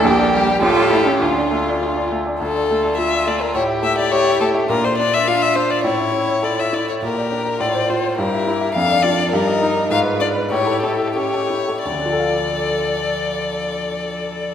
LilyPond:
<<
  \new Staff \with { instrumentName = "Violin" } { \time 2/4 \key d \minor \tempo 4 = 103 g'8 g'8 a'4 | f'4. r8 | a'4 e''8 d''16 bes'16 | cis''8 e''16 d''16 cis''8 a'8 |
bes'16 c''16 d''16 e''16 f''16 e''16 c''16 d''16 | cis''4 d''16 e''16 d''16 cis''16 | bes'4 d''8 c''8 | bes'4 f''8 d''8 |
bes'4 eis''8 d''8 | cis''8 a'8 cis''4 | d''2~ | d''2 | }
  \new Staff \with { instrumentName = "Grand piano" } { \time 2/4 \key d \minor bes,,16 d''16 g16 d''16 a,,16 cis''16 a16 cis''16 | d,16 d''16 a16 d''16 f'16 d''16 a16 d''16 | d,16 d''16 a16 d''16 f'16 d''16 a16 d''16 | a,16 e''16 a16 e''16 g'16 e''16 a16 e''16 |
bes,16 d''16 d'16 d''16 f'16 d''16 d'16 d''16 | a,16 cis''16 e'16 cis''16 a'16 cis''16 e'16 cis''16 | bes,16 d''16 d'16 d''16 a,16 c''16 f'16 c''16 | g,16 e''16 e'16 e''16 f,16 d''16 f'16 d''16 |
g,16 ees''16 ees'16 ees''16 gis,16 b'16 d'16 b'16 | a,16 a'16 e'16 a'16 g'16 a'16 e'16 a'16 | <d, d d' f' a' f''>2~ | <d, d d' f' a' f''>2 | }
  \new Staff \with { instrumentName = "Violin" } { \time 2/4 \key d \minor g'4 g'4 | f'4. r8 | f'2 | g'2 |
f'2 | e'4. r8 | g'4 f'4 | e'4 d'4 |
ees'4 b'4 | g'4. r8 | a'2~ | a'2 | }
  \new Staff \with { instrumentName = "Cello" } { \time 2/4 \key d \minor bes4 f'8 e'16 cis'16 | d'4 r4 | r4 f'4 | e'2 |
d'2 | cis'4 f'8 e'8 | r4 f'4 | g'4 a'4 |
g'8 ees'8 eis'4 | e'4 cis'8 r8 | f2~ | f2 | }
>>